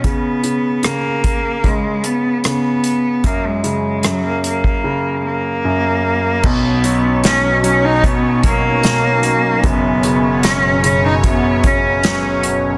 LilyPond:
<<
  \new Staff \with { instrumentName = "Cello" } { \time 4/4 \key b \major \tempo 4 = 75 b4 ais4 gis8 b8 b4 | ais16 gis8. fis16 ais16 ais4 ais4. | b4 cis'8 cis'16 dis'16 b8 ais4. | b4 cis'8 cis'16 dis'16 b8 cis'4 r8 | }
  \new Staff \with { instrumentName = "Analog synth pad" } { \clef bass \time 4/4 \key b \major r1 | r1 | <b, fis cis' dis' cis''>1 | <fis, b, fis cis''>1 | }
  \new Staff \with { instrumentName = "Grand piano" } { \clef bass \time 4/4 \key b \major cis8 cis8 cis4 cis4 cis4 | fis,8 cis8 fis,4 cis4 fis,4 | <b,, b,>8 fis8 b,8 fis8 b,8 fis8 b,4 | <fis,, fis,>8 cis8 fis8 cis8 fis,8 cis8 fis4 | }
  \new DrumStaff \with { instrumentName = "Drums" } \drummode { \time 4/4 <hh bd>8 hh8 <hh ss>8 <hh bd>8 <hh bd>8 hh8 <hh ss>8 hh8 | <hh bd>8 hh8 <hh ss>8 hh16 bd16 r4 r4 | <cymc bd>8 hh8 <hh sn>8 hh8 <hh bd>8 <hh bd>8 <hh sn>8 hh8 | <hh bd>8 hh8 <hh sn>8 hh8 <hh bd>8 <hh bd>8 <hh sn>8 hh8 | }
>>